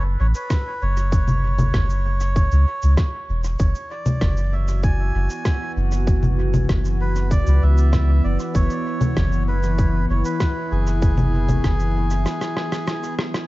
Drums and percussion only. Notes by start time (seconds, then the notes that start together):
0.35 shaker
0.50 kick, cross-stick, shaker
0.97 shaker
1.12 kick, shaker
1.28 low conga, shaker
1.59 low conga, shaker
1.74 kick, cross-stick, shaker
1.90 shaker
2.20 shaker
2.36 kick, shaker
2.51 shaker
2.82 shaker
2.97 kick, cross-stick, shaker
3.44 shaker
3.59 kick, shaker
3.75 shaker
4.06 low conga, shaker
4.21 kick, cross-stick, shaker
4.37 shaker
4.68 shaker
4.83 kick, shaker
5.30 shaker
5.45 kick, cross-stick, shaker
5.92 shaker
6.07 kick, shaker
6.23 low conga, shaker
6.54 low conga, shaker
6.69 kick, cross-stick, shaker
6.85 shaker
7.16 shaker
7.31 kick, shaker
7.47 shaker
7.77 shaker
7.93 kick, cross-stick, shaker
8.39 shaker
8.55 kick, shaker
8.70 shaker
9.01 low conga, shaker
9.17 kick, cross-stick, shaker
9.32 shaker
9.63 shaker
9.78 kick, shaker
10.25 shaker
10.40 kick, cross-stick, shaker
10.87 shaker
11.02 kick, shaker
11.18 low conga, shaker
11.49 low conga, shaker
11.64 kick, cross-stick, shaker
11.80 shaker
12.10 shaker
12.26 cross-stick, shaker
12.41 cross-stick, shaker
12.57 cross-stick
12.72 cross-stick, shaker
12.88 cross-stick, shaker
13.03 shaker
13.19 cross-stick
13.34 cross-stick, shaker